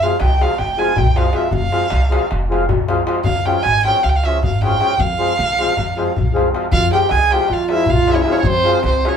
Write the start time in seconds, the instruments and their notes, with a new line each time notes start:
0.02 accordion F3 G#3 C4 F4, violin F5, darbuka tek
0.20 upright bass C2, violin G5, darbuka tek
0.32 darbuka tek
0.40 accordion F3 G#3 C4 F4, violin F5, darbuka tek
0.50 darbuka tek
0.58 upright bass F1, violin G5, darbuka tek
0.77 accordion F3 G#3 C4 F4, violin G#5, darbuka tek
0.96 upright bass C2, violin G5, darbuka dum
1.15 accordion F3 G#3 C4 F4, violin F5, darbuka tek
1.33 accordion F3 G#3 C4 F4, violin E5, darbuka tek
1.51 upright bass F1, violin F5, darbuka dum
1.71 accordion F3 G#3 C4 F4, darbuka tek
1.90 upright bass C2, darbuka tek
2.01 darbuka tek
2.10 accordion F3 G#3 C4 F4, darbuka tek
2.31 upright bass F1, darbuka tek
2.49 accordion F3 G#3 C4 F4, darbuka tek
2.69 upright bass C2, darbuka dum
2.88 accordion F3 G#3 C4 F4, darbuka tek
3.05 accordion F3 G#3 C4 F4, darbuka tek
3.24 upright bass C#2, violin F5, darbuka dum
3.45 accordion F3 G#3 C#4 F4, violin G5, darbuka tek
3.63 upright bass G#1, violin G#5, darbuka tek
3.73 darbuka tek
3.84 accordion F3 G#3 C#4 F4, violin G5, darbuka tek
3.94 darbuka tek
4.03 upright bass C#2, violin F5, darbuka tek
4.09 violin G5
4.16 violin F5
4.24 accordion F3 G#3 C#4 F4, violin E5, darbuka tek
4.43 upright bass G#1, violin F5, darbuka dum
4.62 accordion F3 G#3 C#4 F4, violin G5, darbuka tek
4.79 accordion F3 G#3 C#4 F4, darbuka tek
4.98 upright bass F2, violin F5, darbuka dum
5.09 darbuka tek
5.18 accordion F3 G#3 C4 F4, darbuka tek
5.30 darbuka tek
5.38 upright bass C2, darbuka tek
5.49 darbuka tek
5.59 accordion F3 G#3 C4 F4, darbuka tek
5.68 darbuka tek
5.77 upright bass F2, darbuka tek, darbuka dum
5.88 darbuka tek
5.96 accordion F3 G#3 C4 F4, darbuka tek
6.07 darbuka tek
6.16 upright bass C2, darbuka dum
6.27 darbuka tek
6.33 accordion F3 G#3 C4 F4, darbuka tek
6.53 accordion F3 G#3 C4 F4, darbuka tek
6.72 upright bass F2, clarinet F4, violin F5, darbuka dum
6.91 accordion F3 G#3 C4 F4, clarinet G4, violin G5, darbuka tek
7.09 upright bass C2, clarinet G#4, violin G#5, darbuka tek
7.20 darbuka tek
7.30 accordion F3 G#3 C4 F4, clarinet G4, violin G5, darbuka tek
7.40 darbuka tek
7.48 upright bass F2, clarinet F4, darbuka tek
7.53 violin F5
7.69 accordion F3 G#3 C4 F4, violin E5, darbuka tek
7.74 clarinet E4
7.86 upright bass C2, violin F5, darbuka dum
7.93 clarinet F4
8.07 accordion F3 G#3 C4 F4, darbuka tek
8.11 clarinet E4, violin C#5 E5
8.16 clarinet C#4
8.21 clarinet E4, violin E5, darbuka tek
8.27 accordion F3 G#3 C4 F4
8.31 clarinet C#4 E4, violin C#5 E5
8.38 clarinet C#4, violin C#5
8.43 upright bass F2, violin C5, darbuka dum
8.47 clarinet C4
8.64 accordion F3 G#3 C4 F4, darbuka tek
8.83 upright bass C2, clarinet C4, violin C5, darbuka tek
8.95 darbuka tek
9.04 accordion F3 G#3 C4 F4, clarinet C#4, darbuka tek
9.08 violin C#5